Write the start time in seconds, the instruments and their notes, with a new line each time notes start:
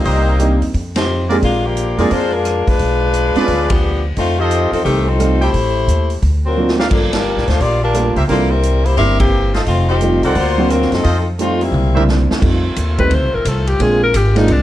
Already playing: saxophone section G3 A#3 C4 D#4
0.05 upright bass C2, trumpet section G4 A#4 C5 D#5, kick, open hi-hat
0.39 grand piano G3 A#3 C4 D4 D#4, closed hi-hat
0.61 upright bass E2, open hi-hat
0.74 upright bass F2, kick, open hi-hat
0.96 saxophone section F3 C4 D#4 G4, snare, ride
1.30 grand piano G#3 A#3 C4 D4 G4, trumpet section F4 G#4 A#4 D5, open hi-hat
1.42 upright bass A#1, saxophone section G#3 A#3 D4 F4, kick, open hi-hat
1.64 saxophone section F3 A#3 D4 G4
1.77 closed hi-hat
1.98 upright bass F2, saxophone section F3 A#3 D4 G#4, grand piano G#3 A#3 C4 D4 F4, trumpet section F4 G#4 A#4 D5, open hi-hat
2.11 upright bass F2, saxophone section G#3 D4 F4 C5, kick, open hi-hat
2.33 saxophone section G#3 D4 F4 A#4
2.45 cross-stick, closed hi-hat
2.67 saxophone section G#3 D4 F4 B4, muted upright bass stroke, kick, open hi-hat
2.79 upright bass B1, kick, open hi-hat
3.14 closed hi-hat
3.35 grand piano G#3 B3 C#4 D4 F4, trumpet section F4 G#4 B4 D5, muted upright bass stroke, open hi-hat
3.48 upright bass D2, kick, open hi-hat
3.70 saxophone section F3 B3 D4 G4, kick, ride
4.16 upright bass F2, saxophone section A3 C4 D#4 F4, kick, open hi-hat
4.38 saxophone section F3 C4 D#4 G4, trumpet section F4 A4 C5 D#5
4.51 closed hi-hat
4.72 upright bass E2, saxophone section F3 C4 D#4 A4, open hi-hat
4.85 upright bass C2, saxophone section D#3 A3 C4 G4, kick, open hi-hat
5.07 saxophone section F3 C4 D#4 A4
5.19 grand piano G3 A3 C4 D#4 F4, cross-stick, closed hi-hat
5.41 saxophone section A3 E4 G4 C5, trumpet section G4 A4 C5 G5, open hi-hat
5.54 upright bass A1, kick, open hi-hat
5.87 upright bass D#2, closed hi-hat
6.10 open hi-hat
6.22 upright bass D2, kick, open hi-hat
6.45 saxophone section F#3 C4 F4 A#4
6.57 grand piano F#3 A#3 C4 D4 F4
6.68 snare
6.78 trumpet section G4 A#4 D5 F5, snare
6.91 upright bass G1, saxophone section F3 A#3 D4 A4, kick, crash
7.12 saxophone section G3 D4 F4 A#4, snare, ride
7.36 upright bass A#1, snare
7.47 upright bass D2, saxophone section A3 D4 F4 C5, snare, open hi-hat
7.60 upright bass A#1, saxophone section A#3 F4 G4 D5, kick, open hi-hat
7.83 saxophone section G3 D4 F4 A#4
7.94 grand piano G3 A3 A#3 D4 F4, cross-stick, closed hi-hat
8.16 upright bass C#2, trumpet section G4 A#4 C5 E5, open hi-hat
8.28 upright bass C2, saxophone section F3 A#3 D4 A4, grand piano G3 A#3 C4 D4 E4, kick, open hi-hat
8.50 saxophone section G3 C4 E4 A#4
8.63 closed hi-hat
8.85 saxophone section A#3 E4 G4 C5, open hi-hat
8.97 upright bass G1, grand piano G3 A#3 C4 D4 E4, saxophone section C4 G4 A#4 E5, kick, open hi-hat
9.19 saxophone section E3 A#3 C4 G4, kick, ride
9.54 trumpet section F4 A4 C5 D#5, snare, open hi-hat
9.66 upright bass F1, saxophone section A3 C4 D#4 F4, kick, open hi-hat
9.88 saxophone section F3 C4 D#4 G4
10.01 grand piano G3 A3 C4 D#4 F4, closed hi-hat
10.22 upright bass C2, saxophone section F3 C4 D#4 A4, trumpet section A#4 C5 D5 F#5, open hi-hat
10.35 upright bass D2, saxophone section A#3 F4 F#4 C5, kick, open hi-hat
10.58 grand piano F#3 A#3 C4 D4 F#4
10.70 saxophone section F#3 C4 F4 A#4, cross-stick, closed hi-hat
10.82 snare
10.92 upright bass F#2, saxophone section F3 C4 D#4 A4, snare, open hi-hat
11.04 upright bass F2, trumpet section F4 A4 C5 D#5, kick, open hi-hat
11.39 grand piano G3 A3 C4 D#4 F4, saxophone section A3 C4 D#4 F4, closed hi-hat
11.61 saxophone section G3 A#3 C4 E4, open hi-hat
11.72 upright bass C2, mid tom
11.95 grand piano G3 A#3 C4 D4 E4, trumpet section G4 A#4 C5 E5, mid tom
12.09 snare
12.29 upright bass E2, snare
12.40 upright bass F2, saxophone section D#3 A3 C4 F4, grand piano G3 A3 C4 D#4 F4, kick, crash
12.76 upright bass D#2, kick, hi-hat pedal, ride
12.98 grand piano G3 A3 C4 D#4 G4, alto saxophone B4, kick, ride
13.10 upright bass D2, alto saxophone C5, kick, ride
13.22 upright bass C2
13.34 upright bass A1, alto saxophone A#4
13.45 upright bass C2, alto saxophone A4, kick, hi-hat pedal, ride
13.67 alto saxophone G4, ride
13.79 upright bass A#1, saxophone section D3 G#3 A#3, grand piano G#3 A#3 C4 D4 F4, alto saxophone G#4, kick, ride
14.03 alto saxophone A#4
14.14 upright bass G#1, alto saxophone G4, kick, hi-hat pedal, ride
14.35 grand piano G#3 A#3 C4 D4 F4, alto saxophone D#4, snare, ride
14.48 upright bass C2, alto saxophone D4, kick, ride